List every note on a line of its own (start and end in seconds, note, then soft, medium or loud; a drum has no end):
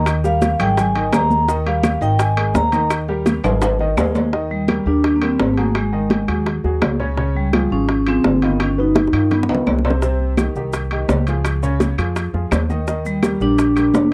0.00 0.54 D#2 medium
0.00 0.18 D#3 medium
0.00 0.18 D#4 medium
0.00 0.18 D#5 medium
0.06 high bongo medium
0.06 high timbale medium
0.06 claves medium
0.06 maracas medium
0.24 0.53 G3 medium
0.24 0.53 G4 medium
0.24 0.54 A#4 medium
0.24 0.58 F5 medium
0.24 high bongo soft
0.24 high conga soft
0.24 maracas medium
0.42 high bongo medium
0.42 high conga loud
0.42 high timbale medium
0.42 maracas medium
0.59 1.09 G#1 medium
0.59 0.89 G#3 medium
0.59 0.89 G#4 medium
0.59 0.89 A#4 medium
0.59 0.77 G5 medium
0.59 high bongo soft
0.59 high conga soft
0.59 low conga medium
0.59 high timbale loud
0.59 claves medium
0.59 maracas soft
0.77 1.11 G#5 medium
0.77 high bongo medium
0.77 high conga soft
0.77 low conga medium
0.77 high timbale medium
0.77 maracas medium
0.95 1.10 D#3 medium
0.95 1.10 D#4 medium
0.95 1.10 D#5 medium
0.95 high bongo soft
0.95 high conga soft
0.95 high timbale medium
1.12 1.96 D#2 medium
1.12 1.42 G#3 medium
1.12 1.42 G#4 medium
1.12 1.42 A#4 medium
1.12 1.46 A#5 loud
1.12 high bongo medium
1.12 low bongo medium
1.12 high conga medium
1.12 high timbale medium
1.12 low timbale medium
1.12 claves medium
1.12 maracas medium
1.30 high conga medium
1.30 maracas soft
1.48 1.63 D#3 medium
1.48 1.63 D#4 medium
1.48 1.63 D#5 medium
1.48 high bongo medium
1.48 maracas medium
1.66 1.95 G3 medium
1.66 1.96 G4 medium
1.66 1.96 A#4 medium
1.66 2.00 F5 medium
1.66 high conga soft
1.66 high timbale medium
1.83 high bongo medium
1.83 high conga loud
1.83 high timbale medium
1.83 claves medium
1.83 maracas medium
2.01 2.51 G#1 medium
2.01 2.31 D#3 medium
2.01 2.31 D#4 medium
2.01 2.31 D#5 medium
2.01 2.19 G5 medium
2.01 maracas soft
2.19 2.53 G#5 medium
2.19 high bongo medium
2.19 high conga soft
2.19 high timbale medium
2.19 maracas medium
2.37 2.66 G#3 medium
2.37 2.66 G#4 medium
2.37 2.66 A#4 medium
2.37 high conga soft
2.37 high timbale loud
2.37 claves medium
2.55 3.38 D#2 medium
2.55 2.89 A#5 medium
2.55 high bongo medium
2.55 low bongo medium
2.55 high conga medium
2.55 low timbale medium
2.55 maracas medium
2.72 3.02 D#3 medium
2.72 3.02 D#4 medium
2.72 3.02 D#5 medium
2.72 high conga medium
2.72 high timbale medium
2.72 maracas soft
2.90 high bongo medium
2.90 high conga soft
2.90 high timbale medium
2.90 claves medium
2.90 maracas medium
3.08 3.38 G3 medium
3.08 3.38 G4 medium
3.08 3.38 A#4 medium
3.08 high bongo soft
3.08 high conga soft
3.26 high bongo medium
3.26 high conga loud
3.26 high timbale medium
3.26 maracas medium
3.44 3.93 G#1 medium
3.44 3.73 G#3 medium
3.44 3.74 G#4 medium
3.44 3.74 A#4 medium
3.44 high bongo soft
3.44 high conga soft
3.44 low conga medium
3.44 high timbale medium
3.44 claves medium
3.44 maracas soft
3.62 high bongo medium
3.62 high conga soft
3.62 high timbale loud
3.62 maracas medium
3.79 3.95 D#3 medium
3.79 3.95 D#4 medium
3.79 3.95 D#5 medium
3.79 high bongo soft
3.79 high conga soft
3.97 4.80 D#2 medium
3.97 4.27 G#3 medium
3.97 4.27 G#4 medium
3.97 4.27 A#4 medium
3.97 high bongo medium
3.97 low bongo medium
3.97 high conga medium
3.97 low timbale loud
3.97 claves medium
3.97 maracas medium
4.15 high conga medium
4.15 low timbale medium
4.15 maracas soft
4.33 4.62 D#3 medium
4.33 4.62 D#4 medium
4.33 4.63 D#5 medium
4.33 high bongo medium
4.33 high conga soft
4.50 4.88 G3 medium
4.50 high conga soft
4.68 4.83 G3 medium
4.68 4.83 G4 medium
4.68 4.84 A#4 medium
4.68 high bongo medium
4.68 high conga medium
4.68 high timbale medium
4.68 low timbale soft
4.68 claves medium
4.86 5.36 D#2 medium
4.86 5.16 G3 medium
4.86 5.16 D4 medium
4.86 5.16 G4 medium
4.86 5.16 A#4 medium
4.86 high conga soft
5.04 high bongo medium
5.04 high conga soft
5.04 high timbale medium
5.16 5.22 A#3 medium
5.22 5.51 G3 medium
5.22 5.54 C4 medium
5.22 5.51 G4 medium
5.22 5.51 A#4 medium
5.22 high conga soft
5.22 high timbale medium
5.22 claves medium
5.39 6.23 G#1 medium
5.39 high bongo medium
5.39 low bongo medium
5.39 high conga medium
5.39 low timbale medium
5.54 5.87 F#3 medium
5.54 5.58 A3 medium
5.54 high conga soft
5.54 high timbale medium
5.58 5.66 A#3 medium
5.58 5.87 F#4 medium
5.58 5.87 G#4 medium
5.75 6.43 G#3 medium
5.75 high bongo medium
5.75 high conga soft
5.75 high timbale medium
5.75 claves medium
5.93 6.22 D#3 medium
5.93 6.22 D#4 medium
5.93 6.22 D#5 medium
5.93 high conga soft
6.10 high bongo medium
6.10 high conga medium
6.10 high timbale medium
6.10 low timbale soft
6.28 6.61 D#2 medium
6.28 6.57 F#3 medium
6.28 6.57 F#4 medium
6.28 6.58 G#4 medium
6.28 high bongo soft
6.28 high conga soft
6.28 high timbale medium
6.28 claves medium
6.46 high bongo medium
6.46 high conga soft
6.46 high timbale medium
6.64 6.81 D#2 medium
6.64 6.93 F#3 medium
6.64 6.93 F#4 medium
6.64 6.94 G#4 medium
6.64 high bongo soft
6.64 high conga soft
6.82 7.65 C#2 medium
6.82 high bongo medium
6.82 low bongo medium
6.82 high conga medium
6.82 high timbale medium
6.82 low timbale medium
6.82 claves medium
7.00 7.14 C#3 medium
7.00 7.14 C#4 medium
7.00 7.15 C#5 medium
7.00 high bongo soft
7.17 7.47 C#3 medium
7.17 7.47 C#4 medium
7.17 7.47 C#5 medium
7.17 high bongo medium
7.17 high conga soft
7.35 7.52 G3 medium
7.35 high conga soft
7.53 7.68 F3 medium
7.53 7.62 G3 medium
7.53 7.68 F4 medium
7.53 7.68 G#4 medium
7.53 high bongo medium
7.53 high conga loud
7.53 high timbale medium
7.53 low timbale soft
7.53 claves medium
7.70 8.20 G#1 medium
7.70 8.00 F3 medium
7.70 8.08 C#4 medium
7.70 8.00 F4 medium
7.70 8.01 G#4 medium
7.89 high bongo medium
7.89 high conga soft
7.89 high timbale medium
8.06 8.36 F3 medium
8.06 8.44 C4 medium
8.06 8.36 F4 medium
8.06 8.36 G#4 medium
8.06 high conga soft
8.06 high timbale medium
8.06 claves medium
8.24 9.07 G1 medium
8.24 high bongo medium
8.24 low bongo medium
8.24 high conga medium
8.24 low timbale medium
8.42 8.72 D#3 medium
8.42 8.60 B3 medium
8.42 8.72 D#4 medium
8.42 8.72 F4 medium
8.42 high conga soft
8.42 high timbale medium
8.60 8.79 C#4 medium
8.60 high bongo medium
8.60 high conga soft
8.60 high timbale medium
8.60 claves medium
8.78 9.07 B2 medium
8.78 9.07 B3 medium
8.78 9.34 D#4 medium
8.78 9.07 B4 medium
8.78 high conga soft
8.95 high bongo medium
8.95 high conga medium
8.95 high timbale medium
8.95 low timbale soft
9.07 high bongo medium
9.13 9.46 G2 medium
9.13 9.42 D#3 medium
9.13 9.43 D#4 medium
9.13 9.43 F4 medium
9.13 high conga soft
9.13 high timbale medium
9.13 claves medium
9.31 9.65 B3 medium
9.31 low bongo medium
9.31 high conga soft
9.31 high timbale medium
9.43 low bongo medium
9.48 9.65 C#2 medium
9.48 9.78 D#3 medium
9.48 9.79 D#4 medium
9.48 9.79 F4 medium
9.48 high conga soft
9.48 high timbale medium
9.54 low bongo medium
9.66 10.50 C2 medium
9.66 low bongo medium
9.66 high conga medium
9.66 low timbale medium
9.66 claves medium
9.78 low bongo medium
9.85 9.99 C3 medium
9.85 9.99 C4 medium
9.85 9.99 C5 medium
9.85 low timbale medium
9.90 low bongo medium
10.02 10.32 C3 medium
10.02 10.32 C4 medium
10.02 10.32 C5 medium
10.02 high bongo medium
10.02 high conga soft
10.02 maracas medium
10.20 high conga soft
10.37 10.53 D#3 medium
10.37 10.53 D#4 medium
10.37 10.53 G4 medium
10.37 high bongo medium
10.37 high conga medium
10.37 high timbale medium
10.37 low timbale soft
10.37 claves medium
10.37 maracas medium
10.55 11.05 C2 medium
10.55 10.85 D#3 medium
10.55 10.85 D#4 medium
10.55 10.86 G4 medium
10.55 high conga soft
10.55 maracas soft
10.73 high bongo medium
10.73 high conga soft
10.73 high timbale medium
10.73 maracas medium
10.91 11.21 D#3 medium
10.91 11.21 D#4 medium
10.91 11.21 G4 medium
10.91 high conga soft
10.91 high timbale medium
10.91 claves medium
11.09 11.92 C#2 medium
11.09 high bongo medium
11.09 low bongo medium
11.09 high conga medium
11.09 low timbale medium
11.09 maracas medium
11.27 11.57 F3 medium
11.27 11.57 F4 medium
11.27 11.57 G#4 medium
11.27 high timbale medium
11.27 maracas soft
11.45 high bongo medium
11.45 high conga soft
11.45 high timbale medium
11.45 claves medium
11.45 maracas medium
11.63 11.92 C#3 medium
11.63 11.92 C#4 medium
11.63 11.92 C#5 medium
11.63 high conga soft
11.63 maracas medium
11.80 high bongo medium
11.80 high conga medium
11.80 high timbale medium
11.80 low timbale soft
11.80 maracas medium
11.98 12.31 F2 medium
11.98 12.27 F3 medium
11.98 12.28 F4 medium
11.98 12.28 G#4 medium
11.98 high bongo soft
11.98 high conga soft
11.98 high timbale medium
11.98 claves medium
11.98 maracas soft
12.16 high bongo medium
12.16 high conga soft
12.16 high timbale medium
12.16 maracas medium
12.33 12.50 F2 medium
12.33 12.63 F3 medium
12.33 12.63 F4 medium
12.33 12.63 G#4 medium
12.33 high bongo soft
12.33 high conga soft
12.51 13.35 D#2 medium
12.51 high bongo medium
12.51 low bongo medium
12.51 high conga medium
12.51 high timbale medium
12.51 low timbale medium
12.51 claves medium
12.51 maracas medium
12.70 12.84 D#3 medium
12.70 12.84 D#4 medium
12.70 12.84 D#5 medium
12.70 high bongo soft
12.70 high conga medium
12.70 maracas soft
12.87 13.17 D#3 medium
12.87 13.17 D#4 medium
12.87 13.17 D#5 medium
12.87 high bongo medium
12.87 high conga soft
12.87 maracas medium
13.05 13.42 G3 medium
13.05 high conga soft
13.05 maracas medium
13.23 13.38 G3 medium
13.23 13.38 G4 medium
13.23 13.38 A#4 medium
13.23 high bongo medium
13.23 high conga medium
13.23 high timbale medium
13.23 low timbale soft
13.23 claves medium
13.23 maracas medium
13.40 13.90 A#1 medium
13.40 13.70 G3 medium
13.40 14.09 D4 loud
13.40 13.70 G4 medium
13.40 13.70 A#4 medium
13.40 high conga soft
13.40 maracas soft
13.58 high bongo medium
13.58 high conga soft
13.58 high timbale medium
13.58 maracas medium
13.76 14.05 G3 medium
13.76 14.06 G4 medium
13.76 14.06 A#4 medium
13.76 high conga soft
13.76 high timbale medium
13.76 claves medium
13.76 maracas medium
13.94 14.13 F1 medium
13.94 high bongo medium
13.94 low bongo medium
13.94 high conga medium
13.94 low timbale medium
13.94 maracas medium